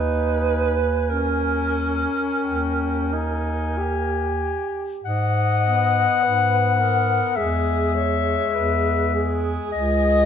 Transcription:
Already playing: D#2 D#4 B4 G#5
1.09 C#4 A#4
2.44 D#2 G5
3.13 D#4 G#5
3.78 G4
5.04 G#2 D#5 F#5
5.64 B3
6.21 G#2 B4
6.79 B3 A#4
7.36 E2 G#3 G#4 E5
7.95 G#3 C#5
8.53 E2 B4
9.13 G#3 G#4
9.72 C#2 D#5

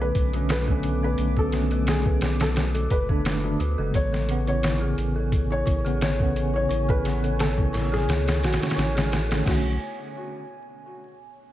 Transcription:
Already playing: B1 D3 A3 B3 C#4 F#4 A4 D6
0.00 B4
0.15 B1, kick, closed hi-hat
0.33 D3 A3 C#4 F#4, closed hi-hat
0.49 F#4 B4, snare, closed hi-hat
0.68 D3 A3 C#4 A4, kick
0.83 closed hi-hat
1.03 B4
1.18 B1, closed hi-hat
1.37 F#4 A4, kick
1.52 D3 A3 C#4 F#4, snare, closed hi-hat
1.71 A4, closed hi-hat
1.87 G#4, snare, closed hi-hat
2.06 B4, kick
2.21 B1, snare, closed hi-hat
2.40 F#4 A4, snare, closed hi-hat
2.56 F#4, snare, closed hi-hat
2.74 A4, closed hi-hat
2.90 F#1 B4, kick, closed hi-hat
3.09 D3 A3 D4 B4, kick
3.25 snare, closed hi-hat
3.43 D3 A3 D4 F#4
3.60 D2 F#4, closed hi-hat
3.78 F#1 C#3 G#3 B3 A4
3.94 A1 C#5 G#5, kick, closed hi-hat
4.12 A4, snare
4.28 C#3 B3, closed hi-hat
4.47 E4 C#5, closed hi-hat
4.63 E4, snare, closed hi-hat
4.81 G#4
4.97 A1, closed hi-hat
5.16 A4
5.32 kick, closed hi-hat
5.50 E4 C#5
5.66 A1 E4, kick, closed hi-hat
5.85 C#3 B3 G#4, closed hi-hat
6.01 C#5, snare, closed hi-hat
6.19 C#3 B3 A4, kick
6.36 closed hi-hat
6.54 E4 C#5
6.69 A1 E4, closed hi-hat
6.88 G#4 B4, kick
7.05 C#3 B3, snare, closed hi-hat
7.23 A4, closed hi-hat
7.39 A4, snare, closed hi-hat
7.57 E4, kick
7.73 A1 E4, snare, closed hi-hat
7.92 G#4, snare
8.08 C#2, snare, closed hi-hat
8.26 A4, snare, closed hi-hat
8.42 A1 F#4, snare, closed hi-hat
8.53 snare, closed hi-hat
8.61 C#3 C#4 E4, snare, closed hi-hat
8.70 snare, closed hi-hat
8.76 A1 E4, snare, closed hi-hat
8.95 C#3 G#3 C#4 G#4, snare, closed hi-hat
9.12 snare, closed hi-hat
9.29 D3 A3 C#4 A4, snare, closed hi-hat
9.44 B1 D3 A3 F#4, kick, snare, crash
9.49 C#4

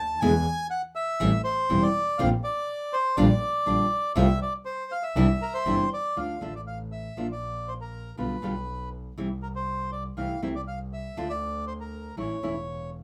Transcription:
Already playing: D2 A5
0.20 E2 B2 D3 G#3 B3 E4 G#5
0.71 F#5
0.96 E5
1.20 A1 E3 G3 C4 E4
1.44 C5
1.69 E1 E3 G3 C4 E4
1.83 D5
2.18 A#1 D3 A#3 C4 F4 F5
2.44 D5
2.93 C5
3.17 A#1 D3 G3 D4 F4 D5
3.66 A#1 D3 G3 D4 F4
4.16 C2 C3 F3 A3 C4 F4 E5
4.42 D5
4.65 C5
4.92 F5
5.03 E5
5.16 C2 C3 E3 G3 D4 E4
5.42 A#4
5.54 C5
5.66 G1 C3 E3 G3 D4 E4
5.94 D5
6.17 D2 D3 A3 D4 F4 F5
6.41 A1 D3 A3 D4 F4 E5
6.56 D5
6.67 F5
6.92 E5
7.17 A#1 F3 A#3 D4 F4
7.32 D5
7.68 C5
7.81 A#4
8.17 B1 B2 D3 G3 B3 F4 B4
8.42 B1 B2 D3 G3 B3 F4
9.17 C2 C3 E3 G3 C4 E4
9.43 A#4
9.56 C5
9.92 D5
10.17 C2 C3 E3 A3 C4 E4 F5
10.42 C2 C3 E3 A3 C4 E4 E5
10.56 D5
10.68 F5
10.93 E5
11.17 D2 D3 A3 D4 F4
11.30 D5
11.67 C5
11.80 A#4
12.17 A1 E3 A3 C#4 E4 C#5
12.43 E1 E3 A3 C#4 E4

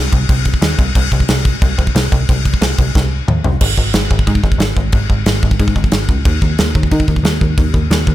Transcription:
0.13 C2, kick, crash
0.29 C2, kick, crash
0.45 kick, crash
0.54 kick
0.62 D#2, snare, crash
0.79 C2, kick, crash
0.95 C2, kick, crash
1.12 C2, kick, crash
1.20 kick
1.28 C2, snare, crash
1.45 kick, crash
1.62 C2, kick, crash
1.78 C2, kick, crash
1.87 kick
1.95 C2, snare, crash
2.12 C2, kick, crash
2.29 C2, kick, crash
2.45 kick, crash
2.54 kick
2.61 C2, snare, crash
2.78 C2, kick, crash
2.95 C2, kick, snare
3.28 D#2, mid tom
3.44 C2, floor tom
3.61 G#1, kick, crash
3.78 G#1, kick
3.93 G#1, snare, crash
4.11 G#1, kick
4.19 kick
4.27 G#2, kick, crash
4.35 kick
4.44 G#1, kick
4.52 kick
4.58 G#1, snare, crash
4.77 G#1, kick
4.92 G#1, kick, crash
5.10 G#1, kick
5.26 G#1, snare, crash
5.43 G#1, kick
5.51 kick
5.59 G#2, kick, crash
5.68 kick
5.76 G#1, kick
5.84 kick
5.91 G#1, snare, crash
6.09 C#2, kick
6.25 D#2, kick, crash
6.42 D#2, kick
6.58 D#2, snare, crash
6.75 D#2, kick
6.83 kick
6.91 D#3, kick, crash
7.00 kick
7.08 D#2, kick
7.16 kick
7.23 D#2, snare, crash
7.41 D#2, kick
7.57 D#2, kick, crash
7.74 D#2, kick
7.90 D#2, snare, crash
8.07 D#2, kick

